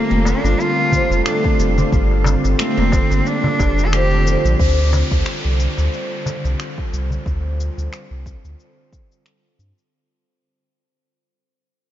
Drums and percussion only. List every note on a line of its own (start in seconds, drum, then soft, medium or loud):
0.25 darbuka tek medium
0.25 shaker medium
0.44 darbuka ka soft
0.44 shaker soft
0.60 shaker soft
0.92 kick medium
0.92 darbuka dum medium
0.92 shaker medium
1.10 darbuka ka soft
1.10 shaker soft
1.26 finger snap loud
1.26 shaker soft
1.44 kick loud
1.60 shaker medium
1.78 darbuka dum medium
1.78 shaker soft
1.92 kick loud
1.92 shaker soft
2.11 darbuka ka soft
2.24 darbuka tek medium
2.24 darbuka dum medium
2.24 shaker medium
2.44 darbuka ka soft
2.44 shaker soft
2.59 finger snap loud
2.59 shaker soft
2.78 darbuka ka soft
2.92 kick loud
2.92 darbuka tek medium
2.92 shaker medium
3.10 darbuka ka soft
3.10 shaker soft
3.26 shaker soft
3.44 darbuka dum medium
3.59 kick loud
3.59 darbuka tek medium
3.59 shaker medium
3.79 shaker soft
3.93 finger snap loud
3.93 shaker soft
4.27 shaker medium
4.46 shaker soft
4.60 kick loud
4.60 shaker soft
4.93 darbuka tek medium
4.93 darbuka dum medium
4.93 shaker medium
5.11 kick loud
5.11 darbuka ka soft
5.11 shaker soft
5.26 finger snap loud
5.26 shaker soft
5.60 shaker medium
5.78 darbuka ka soft
5.78 shaker soft
5.94 shaker soft
6.26 darbuka dum medium
6.26 shaker medium
6.44 darbuka ka soft
6.44 shaker soft
6.60 finger snap medium
6.60 shaker soft
6.78 kick medium
6.94 shaker medium
7.10 darbuka dum medium
7.10 shaker soft
7.26 kick loud
7.26 shaker soft
7.60 shaker medium
7.79 shaker soft
7.93 finger snap loud
7.93 shaker soft
8.26 kick medium
8.26 shaker medium
8.45 shaker soft
8.60 shaker soft
8.93 kick loud
8.93 shaker medium
9.12 shaker soft
9.26 finger snap medium
9.26 shaker soft
9.60 shaker medium
9.78 shaker soft